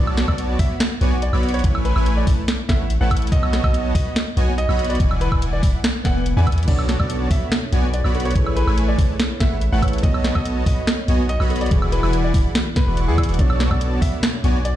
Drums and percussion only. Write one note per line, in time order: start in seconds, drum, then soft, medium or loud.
0.07 high woodblock medium
0.17 snare medium
0.17 closed hi-hat medium
0.28 kick medium
0.28 high woodblock medium
0.38 closed hi-hat medium
0.59 kick loud
0.59 open hi-hat medium
0.80 snare loud
0.80 closed hi-hat medium
1.01 closed hi-hat medium
1.22 closed hi-hat medium
1.33 high woodblock medium
1.43 closed hi-hat medium
1.49 closed hi-hat medium
1.54 closed hi-hat soft
1.59 closed hi-hat medium
1.64 kick loud
1.64 closed hi-hat medium
1.75 high woodblock medium
1.85 closed hi-hat medium
1.96 high woodblock medium
2.06 closed hi-hat medium
2.27 kick loud
2.27 open hi-hat loud
2.48 snare loud
2.48 closed hi-hat medium
2.69 kick loud
2.69 snare medium
2.69 closed hi-hat medium
2.90 closed hi-hat medium
3.11 kick medium
3.11 closed hi-hat medium
3.11 high woodblock medium
3.17 closed hi-hat medium
3.22 closed hi-hat soft
3.27 closed hi-hat medium
3.32 kick loud
3.32 closed hi-hat medium
3.43 high woodblock medium
3.53 snare medium
3.53 closed hi-hat medium
3.64 kick medium
3.64 high woodblock medium
3.74 closed hi-hat medium
3.95 kick loud
3.95 open hi-hat loud
4.16 snare loud
4.16 closed hi-hat medium
4.37 closed hi-hat medium
4.58 closed hi-hat medium
4.69 high woodblock medium
4.79 closed hi-hat medium
4.85 closed hi-hat medium
4.90 closed hi-hat medium
4.95 closed hi-hat medium
5.00 kick loud
5.00 closed hi-hat medium
5.11 high woodblock medium
5.21 closed hi-hat medium
5.32 kick medium
5.32 high woodblock medium
5.42 closed hi-hat medium
5.63 kick loud
5.63 open hi-hat loud
5.84 snare loud
5.84 closed hi-hat medium
6.05 kick loud
6.05 snare medium
6.05 closed hi-hat medium
6.26 closed hi-hat medium
6.47 kick medium
6.47 closed hi-hat medium
6.47 high woodblock medium
6.52 closed hi-hat medium
6.58 closed hi-hat soft
6.63 closed hi-hat medium
6.68 kick loud
6.68 closed hi-hat medium
6.68 crash medium
6.79 high woodblock medium
6.89 snare medium
6.89 closed hi-hat medium
7.00 kick medium
7.00 high woodblock medium
7.10 closed hi-hat medium
7.31 kick loud
7.31 open hi-hat medium
7.52 snare loud
7.52 closed hi-hat medium
7.72 closed hi-hat medium
7.94 closed hi-hat medium
8.04 high woodblock medium
8.15 closed hi-hat medium
8.20 closed hi-hat medium
8.25 closed hi-hat medium
8.31 closed hi-hat medium
8.36 kick loud
8.36 closed hi-hat medium
8.47 high woodblock medium
8.57 closed hi-hat medium
8.67 high woodblock medium
8.78 closed hi-hat medium
8.98 kick loud
8.98 open hi-hat medium
9.20 snare loud
9.20 closed hi-hat medium
9.40 kick loud
9.40 snare medium
9.40 closed hi-hat medium
9.61 closed hi-hat medium
9.82 kick medium
9.82 closed hi-hat medium
9.82 high woodblock medium
9.88 closed hi-hat medium
9.93 closed hi-hat soft
9.98 closed hi-hat medium
10.03 kick loud
10.03 closed hi-hat medium
10.14 high woodblock medium
10.24 snare medium
10.24 closed hi-hat medium
10.35 kick medium
10.35 high woodblock medium
10.45 closed hi-hat medium
10.66 kick loud
10.66 open hi-hat medium
10.87 snare loud
10.87 closed hi-hat medium
11.08 closed hi-hat medium
11.29 closed hi-hat medium
11.40 high woodblock medium
11.50 closed hi-hat soft
11.56 closed hi-hat medium
11.61 closed hi-hat soft
11.66 closed hi-hat medium
11.71 kick loud
11.71 closed hi-hat medium
11.82 high woodblock medium
11.92 closed hi-hat medium
12.03 high woodblock medium
12.13 closed hi-hat medium
12.34 kick loud
12.34 open hi-hat medium
12.55 snare loud
12.55 closed hi-hat medium
12.76 kick loud
12.76 snare medium
12.76 closed hi-hat medium
12.97 closed hi-hat medium
13.18 kick medium
13.18 closed hi-hat medium
13.18 high woodblock medium
13.23 closed hi-hat medium
13.29 closed hi-hat soft
13.34 closed hi-hat medium
13.39 kick loud
13.39 closed hi-hat medium
13.50 high woodblock medium
13.60 snare medium
13.60 closed hi-hat medium
13.71 kick medium
13.71 high woodblock medium
13.81 closed hi-hat medium
14.02 kick loud
14.02 open hi-hat loud
14.23 snare loud
14.23 closed hi-hat medium
14.44 closed hi-hat medium
14.65 closed hi-hat medium